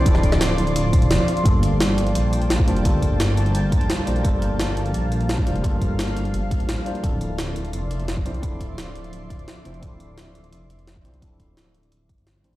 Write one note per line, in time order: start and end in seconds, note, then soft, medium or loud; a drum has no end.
0.00 0.04 F3 medium
0.00 6.99 F3 medium
0.00 1.25 F3 medium
0.00 0.05 C4 medium
0.00 0.06 D4 medium
0.00 0.07 E4 medium
0.00 0.08 A4 medium
0.00 1.47 C5 medium
0.00 1.41 D5 medium
0.00 1.41 C6 medium
0.05 0.74 D1 loud
0.05 1.25 C4 medium
0.05 1.26 D4 medium
0.05 1.26 E4 medium
0.05 1.27 A4 medium
0.05 kick loud
0.05 closed hi-hat medium
0.15 snare soft
0.23 kick medium
0.23 closed hi-hat medium
0.32 snare soft
0.41 snare loud
0.41 closed hi-hat medium
0.58 closed hi-hat medium
0.67 closed hi-hat soft
0.76 0.92 D1 loud
0.76 closed hi-hat medium
0.93 1.03 D1 medium
0.93 kick medium
0.93 closed hi-hat medium
1.02 1.17 E1 medium
1.02 closed hi-hat soft
1.11 snare loud
1.11 closed hi-hat medium
1.28 closed hi-hat medium
1.37 closed hi-hat soft
1.43 2.14 G1 medium
1.43 2.64 G3 medium
1.43 2.65 A#3 medium
1.43 6.99 A#3 medium
1.43 2.65 D4 medium
1.43 2.66 F4 medium
1.43 4.22 G5 medium
1.43 6.99 A5 medium
1.43 kick loud
1.43 closed hi-hat medium
1.48 2.67 A4 medium
1.63 closed hi-hat medium
1.80 snare loud
1.80 closed hi-hat medium
1.98 closed hi-hat medium
2.07 closed hi-hat soft
2.15 2.69 A#1 medium
2.15 closed hi-hat medium
2.33 closed hi-hat medium
2.42 closed hi-hat soft
2.50 snare loud
2.50 closed hi-hat medium
2.59 kick loud
2.66 2.83 F1 medium
2.66 2.82 G3 medium
2.66 2.82 A#3 medium
2.66 2.83 D4 medium
2.66 2.83 F4 medium
2.66 2.83 C5 medium
2.66 closed hi-hat medium
2.77 closed hi-hat soft
2.83 3.53 G1 medium
2.83 4.04 G3 medium
2.83 4.04 A#3 medium
2.83 4.05 D4 medium
2.83 4.05 F4 medium
2.83 kick loud
2.83 closed hi-hat medium
2.87 4.06 A4 medium
3.02 kick medium
3.02 closed hi-hat medium
3.20 snare loud
3.20 closed hi-hat medium
3.37 closed hi-hat medium
3.46 closed hi-hat soft
3.55 3.88 G1 loud
3.55 closed hi-hat medium
3.72 kick loud
3.72 closed hi-hat medium
3.81 closed hi-hat soft
3.90 snare loud
3.90 closed hi-hat medium
4.06 4.23 A#1 loud
4.06 4.21 G3 medium
4.06 4.22 A#3 medium
4.06 4.22 D4 medium
4.06 4.23 F4 medium
4.06 4.23 C5 medium
4.06 closed hi-hat medium
4.16 closed hi-hat soft
4.22 4.93 G1 medium
4.22 5.43 G3 medium
4.22 5.44 A#3 medium
4.22 5.44 D4 medium
4.22 5.45 F4 medium
4.22 7.01 F5 medium
4.22 kick loud
4.22 closed hi-hat medium
4.27 5.46 A4 medium
4.42 closed hi-hat medium
4.59 snare loud
4.59 closed hi-hat medium
4.77 closed hi-hat medium
4.86 closed hi-hat soft
4.94 5.48 A#1 medium
4.94 closed hi-hat medium
5.12 closed hi-hat medium
5.21 closed hi-hat soft
5.29 snare loud
5.29 closed hi-hat medium
5.38 kick loud
5.45 5.62 F1 medium
5.45 5.61 G3 medium
5.45 5.62 A#3 medium
5.45 5.62 D4 medium
5.45 5.62 F4 medium
5.45 5.62 C5 medium
5.45 closed hi-hat medium
5.56 closed hi-hat soft
5.62 6.32 G1 medium
5.62 6.83 G3 medium
5.62 6.83 A#3 medium
5.62 6.84 D4 medium
5.62 6.85 F4 medium
5.62 kick loud
5.62 closed hi-hat medium
5.66 6.85 A4 medium
5.81 kick medium
5.81 closed hi-hat medium
5.99 snare loud
5.99 closed hi-hat medium
6.08 closed hi-hat soft
6.17 closed hi-hat medium
6.25 closed hi-hat soft
6.34 6.51 G1 loud
6.34 closed hi-hat medium
6.51 6.61 G1 medium
6.51 kick loud
6.51 closed hi-hat medium
6.60 6.76 A1 medium
6.60 closed hi-hat soft
6.69 snare loud
6.69 closed hi-hat medium
6.85 7.01 G3 medium
6.85 7.01 A#3 medium
6.85 7.01 D4 medium
6.85 7.02 F4 medium
6.85 7.02 C5 medium
6.85 closed hi-hat medium
6.95 closed hi-hat soft
7.01 7.72 D1 medium
7.01 8.22 F3 medium
7.01 12.56 F3 medium
7.01 8.23 C4 medium
7.01 8.24 D4 medium
7.01 8.24 E4 medium
7.01 12.56 D5 medium
7.01 12.56 E5 medium
7.01 12.56 C6 medium
7.01 kick loud
7.01 closed hi-hat medium
7.06 8.25 A4 medium
7.21 closed hi-hat medium
7.38 snare loud
7.38 closed hi-hat medium
7.56 closed hi-hat medium
7.65 closed hi-hat soft
7.73 8.27 F1 medium
7.73 closed hi-hat medium
7.91 closed hi-hat medium
8.00 closed hi-hat soft
8.08 snare loud
8.08 closed hi-hat medium
8.17 kick loud
8.25 8.41 C2 medium
8.25 8.40 F3 medium
8.25 8.41 C4 medium
8.25 8.41 D4 medium
8.25 8.41 E4 medium
8.25 8.42 C5 medium
8.25 closed hi-hat medium
8.34 closed hi-hat soft
8.41 9.11 D1 loud
8.41 9.62 F3 medium
8.41 9.62 C4 medium
8.41 9.63 D4 medium
8.41 9.64 E4 medium
8.41 kick loud
8.41 closed hi-hat medium
8.45 9.64 A4 medium
8.60 kick medium
8.60 closed hi-hat medium
8.78 snare loud
8.78 closed hi-hat medium
8.95 closed hi-hat medium
9.04 closed hi-hat soft
9.13 9.46 D1 medium
9.13 closed hi-hat medium
9.30 kick medium
9.30 closed hi-hat medium
9.39 closed hi-hat soft
9.48 snare loud
9.48 closed hi-hat medium
9.64 9.81 F1 medium
9.64 9.79 F3 medium
9.64 9.80 C4 medium
9.64 9.80 D4 medium
9.64 9.81 E4 medium
9.64 9.81 C5 medium
9.64 closed hi-hat medium
9.74 closed hi-hat soft
9.80 10.51 D1 medium
9.80 11.01 F3 medium
9.80 11.02 C4 medium
9.80 11.03 D4 medium
9.80 11.03 E4 medium
9.80 kick loud
9.80 closed hi-hat medium
9.85 11.04 A4 medium
10.00 closed hi-hat medium
10.18 snare loud
10.18 closed hi-hat medium
10.35 closed hi-hat medium
10.44 closed hi-hat soft
10.52 11.06 F1 medium
10.52 closed hi-hat medium
10.70 closed hi-hat medium
10.79 closed hi-hat soft
10.87 snare loud
10.87 closed hi-hat medium
10.96 kick medium
11.04 11.20 C2 medium
11.04 11.19 F3 medium
11.04 11.20 C4 medium
11.04 11.20 D4 medium
11.04 11.20 E4 medium
11.04 11.21 C5 medium
11.04 closed hi-hat medium
11.14 closed hi-hat soft
11.20 11.90 D1 medium
11.20 12.41 F3 medium
11.20 12.42 C4 medium
11.20 12.42 D4 medium
11.20 12.43 E4 medium
11.20 kick loud
11.20 closed hi-hat medium
11.24 12.43 A4 medium
11.40 kick medium
11.40 closed hi-hat medium
11.57 snare loud
11.57 closed hi-hat medium
11.75 closed hi-hat medium
11.83 closed hi-hat soft
11.92 12.09 D1 loud
11.92 closed hi-hat medium
12.09 12.46 G1 medium
12.09 kick medium
12.09 closed hi-hat medium
12.18 closed hi-hat soft
12.27 snare loud
12.27 closed hi-hat medium
12.43 12.56 A1 loud
12.43 12.56 F3 medium
12.43 12.56 C4 medium
12.43 12.56 D4 medium
12.43 12.56 E4 medium
12.43 12.56 C5 medium
12.43 closed hi-hat medium